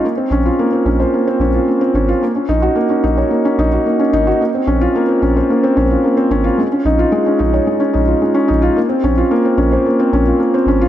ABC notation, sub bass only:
X:1
M:4/4
L:1/8
Q:1/4=110
K:Ebdor
V:1 name="Sub bass" clef=bass
z B,,, z B,,, z B,,, z A,,, | z B,,, z B,,, z B,,, z A,,, | z B,,, z B,,, z B,,, z A,,, | z B,,, z B,,, z B,,, z B,,, |
z B,,, z B,,, z B,,, z A,,, |]